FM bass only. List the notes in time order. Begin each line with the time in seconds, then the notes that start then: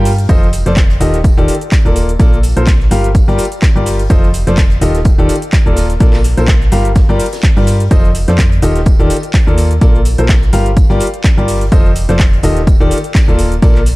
Already playing: G2
0.29 F1
0.66 F1
1.01 D#1
1.37 D#1
1.85 D#1
2.20 A#1
2.57 A#1
2.91 G1
3.28 G1
3.76 G1
4.10 F1
4.47 F1
4.81 D#1
5.18 D#1
5.66 D#1
6.00 A#1
6.37 A#1
6.72 G1
7.09 G1
7.57 G2
7.91 F1
8.28 F2
8.62 D#1
8.99 D#1
9.47 D#2
9.81 A#1
10.18 A#1
10.53 G1
10.90 G1
11.37 G1
11.72 F1
12.09 F1
12.43 D#1
12.80 D#1
13.28 D#1
13.62 A#1